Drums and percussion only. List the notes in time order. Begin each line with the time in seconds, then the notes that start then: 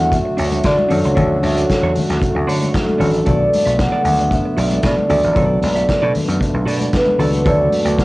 0.00 closed hi-hat
0.12 kick, closed hi-hat, muted conga
0.38 open hi-hat
0.52 closed hi-hat, high conga
0.63 kick, snare, closed hi-hat
0.79 high conga
0.90 open hi-hat, muted conga, low conga
1.04 closed hi-hat
1.17 kick, closed hi-hat, muted conga, low conga
1.43 open hi-hat, muted conga, high conga
1.57 closed hi-hat
1.70 kick, snare, closed hi-hat
1.95 open hi-hat, high conga, low conga
2.10 snare, closed hi-hat
2.22 kick, closed hi-hat
2.49 open hi-hat, muted conga
2.62 closed hi-hat, high conga
2.74 kick, snare, closed hi-hat, muted conga
2.89 high conga
3.01 open hi-hat, low conga
3.14 closed hi-hat
3.26 kick, closed hi-hat, muted conga, low conga
3.53 open hi-hat, muted conga, high conga
3.67 closed hi-hat
3.79 kick, snare, closed hi-hat, muted conga
4.05 open hi-hat, high conga, low conga
4.19 closed hi-hat
4.31 kick, closed hi-hat, muted conga
4.58 open hi-hat
4.71 closed hi-hat, high conga
4.83 kick, snare, closed hi-hat, muted conga
4.99 high conga
5.10 open hi-hat, low conga
5.23 closed hi-hat
5.36 kick, closed hi-hat, muted conga, low conga
5.62 open hi-hat, muted conga, high conga
5.76 closed hi-hat
5.89 kick, snare, closed hi-hat, muted conga
6.15 open hi-hat, high conga, low conga
6.29 closed hi-hat
6.41 kick, closed hi-hat, muted conga
6.67 open hi-hat, muted conga
6.81 closed hi-hat, high conga
6.93 kick, snare, closed hi-hat, muted conga
7.08 high conga
7.20 open hi-hat, muted conga, low conga
7.33 closed hi-hat
7.46 kick, closed hi-hat, muted conga, low conga
7.72 open hi-hat, high conga
7.86 closed hi-hat
7.99 kick, snare, closed hi-hat